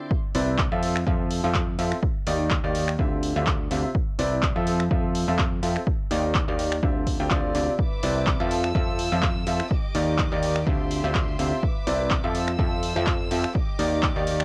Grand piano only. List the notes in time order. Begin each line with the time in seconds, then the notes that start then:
0.35 C3 C4 E4 B4 D5
0.72 F3 C4 F4 A4 E5
1.07 F3 C4 F4 A4 E5
1.44 F3 C4 F4 A4 E5
1.79 C4 F4 A4 E5
2.27 D#3 A#3 D#4 G4 D5
2.64 D#3 A#3 D#4 G4 D5
2.99 D3 C4 F4 G4 E5
3.36 D3 C4 F4 G4 E5
3.71 C3 C4 F4 G4 E5
4.19 C3 C4 E4 B4 D5
4.56 F3 C4 F4 A4 E5
4.91 F3 C4 F4 A4 E5
5.28 F3 C4 F4 A4 E5
5.63 C4 F4 A4 E5
6.11 D#3 A#3 D#4 G4 D5
6.48 D#3 A#3 D#4 G4 D5
6.83 D3 C4 F4 G4 E5
7.20 D3 C4 F4 G4 G5
7.31 D3 C4 F4 G4 D5
7.55 C3 C4 F4 G4 D5
8.03 C3 C4 E4 B4 D5
8.40 F3 C4 F4 A4 E5
8.75 F3 C4 F4 A4 E5
9.12 F3 C4 F4 A4 E5
9.47 C4 F4 A4 E5
9.95 D#3 A#3 D#4 G4 D5
10.32 D#3 A#3 D#4 G4 D5
10.67 D3 C4 F4 G4 E5
11.04 D3 C4 F4 G4 E5
11.39 C3 C4 F4 G4 E5
11.87 C3 C4 E4 B4 D5
12.24 F3 C4 F4 A4 E5
12.59 F3 C4 F4 A4 E5
12.96 F3 C4 F4 A4 E5
13.31 C4 F4 A4 E5
13.79 D#3 A#3 D#4 G4 D5
14.16 D#3 A#3 D#4 G4 D5